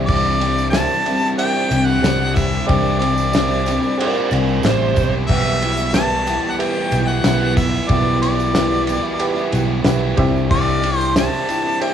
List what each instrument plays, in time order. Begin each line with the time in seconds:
Already playing: fingered electric bass C2, steel-string acoustic guitar C3 E3 G3 C4 D4 G4, reed electric piano G4 C5 D5 E5
0.06 overdriven electric guitar C3 E3 G3 C4 E4, harmonica D5, kick, crash
0.40 overdriven electric guitar E3 G3 C4 E4, steel-string acoustic guitar G3 C4 D4 G4, ride, tambourine
0.56 overdriven electric guitar G3 C4 E4, tambourine
0.70 steel-string acoustic guitar G3 C4 D4, reed electric piano G4 C5 D5 E5, harmonica A5, snare, ride, tambourine
0.75 steel-string acoustic guitar G4
0.91 tambourine
1.04 overdriven electric guitar E3 G3 C4 E4, steel-string acoustic guitar C4 D4 G4, ride
1.08 steel-string acoustic guitar G3
1.21 overdriven electric guitar G3 C4 E4
1.37 reed electric piano G4 C5 D5 E5, harmonica G5, ride, tambourine
1.54 overdriven electric guitar G3 C4 E4, tambourine
1.69 fingered electric bass C2, overdriven electric guitar E3 G3 C4 E4, steel-string acoustic guitar C4 D4 G4, ride, tambourine
1.73 steel-string acoustic guitar G3
1.86 overdriven electric guitar G3 C4 E4, harmonica F#5
2.02 fingered electric bass C2, overdriven electric guitar C3 E3 G3 C4, steel-string acoustic guitar G3 C4 D4 G4, reed electric piano G4 C5 D5 F#5, snare, ride, tambourine
2.06 overdriven electric guitar E4
2.34 overdriven electric guitar E3 G3 C4 E4, harmonica E5, kick, ride, tambourine
2.49 overdriven electric guitar G3 C4 E4, tambourine
2.66 fingered electric bass C2, overdriven electric guitar C3 E3 G3 C4 E4, steel-string acoustic guitar C3 E3 G3 C4 D4, reed electric piano G4 C5 D5 G5, harmonica D5, kick, ride, tambourine
2.70 steel-string acoustic guitar G4
2.85 tambourine
2.99 overdriven electric guitar E3 G3 C4 E4, steel-string acoustic guitar G3 C4 D4 G4, harmonica D5, ride, tambourine
3.15 overdriven electric guitar G3 C4 E4, tambourine
3.32 steel-string acoustic guitar G3 C4 D4 G4, reed electric piano G4 C5 D5 E5, snare, ride, tambourine
3.51 tambourine
3.63 overdriven electric guitar E3 G3 C4 E4, steel-string acoustic guitar D4 G4, tambourine
3.68 steel-string acoustic guitar G3 C4, ride
3.80 overdriven electric guitar G3 C4 E4, tambourine
3.98 reed electric piano G4 C5 D5 F#5, electric slide guitar A#4, ride, tambourine
4.02 electric slide guitar D5
4.13 overdriven electric guitar G3 C4 E4, tambourine
4.30 fingered electric bass C2, overdriven electric guitar E3 G3 C4 E4, steel-string acoustic guitar G3 C4 D4 G4, electric slide guitar A#4 D5, ride, tambourine
4.45 overdriven electric guitar G3 C4 E4, tambourine
4.62 fingered electric bass A1, overdriven electric guitar C3 E3 G3 C4 E4, steel-string acoustic guitar G3 C4 D4, reed electric piano G4 C5 D5 E5, snare, ride, tambourine
4.66 steel-string acoustic guitar G4, electric slide guitar C5
4.95 fingered electric bass B1, overdriven electric guitar E3 G3 C4 E4, kick, ride, tambourine
5.12 overdriven electric guitar G3 C4 E4
5.27 fingered electric bass B1, overdriven electric guitar B2 E3 G3 B3 E4, steel-string acoustic guitar B3 E4 F#4 G4, reed electric piano G4 B4 E5 F#5, harmonica E5, kick, crash
5.60 overdriven electric guitar E3 G3 B3 E4, steel-string acoustic guitar F#4 G4, ride, tambourine
5.65 steel-string acoustic guitar E4
5.77 overdriven electric guitar G3 B3 E4, tambourine
5.93 steel-string acoustic guitar B3 E4 F#4 G4, reed electric piano G4 B4 E5 A5, harmonica A5, snare, ride, tambourine
6.10 tambourine
6.26 overdriven electric guitar E3 G3 B3 E4, steel-string acoustic guitar E4 G4, ride, tambourine
6.43 overdriven electric guitar G3 B3 E4
6.51 harmonica F#5
6.59 reed electric piano G4 B4 E5 G5, harmonica G5, ride, tambourine
6.75 overdriven electric guitar G3 B3 E4, tambourine
6.91 fingered electric bass B1, overdriven electric guitar E3 G3 B3 E4, steel-string acoustic guitar E4 F#4 G4, ride, tambourine
7.08 overdriven electric guitar G3 B3 E4, harmonica F#5
7.24 fingered electric bass B1, overdriven electric guitar B2 E3 G3 B3 E4, steel-string acoustic guitar B3 E4 F#4 G4, reed electric piano G4 B4 E5 F#5, snare, ride, tambourine
7.56 overdriven electric guitar E3 G3 B3 E4, harmonica E5, kick, ride, tambourine
7.72 overdriven electric guitar G3 B3 E4, tambourine
7.89 fingered electric bass B1, overdriven electric guitar B2 E3 G3 B3 E4, steel-string acoustic guitar B3 E4 F#4 G4, reed electric piano G4 B4 E5 F#5, harmonica D5, kick, ride
8.21 overdriven electric guitar E3 G3 B3 E4, steel-string acoustic guitar E4 F#4 G4, harmonica D5, ride, tambourine
8.38 overdriven electric guitar G3 B3 E4, tambourine
8.53 steel-string acoustic guitar B3 E4 F#4, reed electric piano G4 B4 E5 F#5, snare, ride, tambourine
8.58 steel-string acoustic guitar G4
8.72 tambourine
8.86 overdriven electric guitar E3 G3 B3 E4, steel-string acoustic guitar F#4 G4, ride, tambourine
8.90 steel-string acoustic guitar E4
9.03 overdriven electric guitar G3 B3 E4
9.20 reed electric piano G4 B4 E5 F#5, ride, tambourine
9.35 overdriven electric guitar G3 B3 E4, tambourine
9.50 fingered electric bass B1, overdriven electric guitar E3 G3 B3 E4, steel-string acoustic guitar G4, ride
9.54 steel-string acoustic guitar E4 F#4, tambourine
9.68 overdriven electric guitar G3 B3 E4
9.82 fingered electric bass B1, overdriven electric guitar B2 E3 G3 B3 E4, steel-string acoustic guitar B3 E4, reed electric piano G4 B4 E5 F#5, snare, ride
9.87 steel-string acoustic guitar F#4 G4, tambourine
10.15 fingered electric bass C2, overdriven electric guitar C3 E3 G3 C4 E4, steel-string acoustic guitar C3 C4 D4 E4 G4, reed electric piano G4 C5 D5, kick, ride
10.19 reed electric piano E5
10.33 overdriven electric guitar G3 C4 E4, tambourine
10.49 overdriven electric guitar C3 E3 G3 C4 E4, harmonica D5, kick, crash
10.82 overdriven electric guitar E3 G3 C4 E4, steel-string acoustic guitar D4 E4 G4, ride, tambourine
10.97 overdriven electric guitar C4 E4, harmonica C5, tambourine
11.02 overdriven electric guitar G3
11.15 steel-string acoustic guitar C4 D4 E4 G4, reed electric piano G4 C5 D5 E5, harmonica A5, snare, ride, tambourine
11.33 tambourine
11.47 overdriven electric guitar E3 G3 C4 E4, steel-string acoustic guitar D4 G4, ride, tambourine
11.51 steel-string acoustic guitar E4
11.63 overdriven electric guitar G3 C4 E4
11.81 reed electric piano G4 C5 D5 E5, harmonica G5, ride, tambourine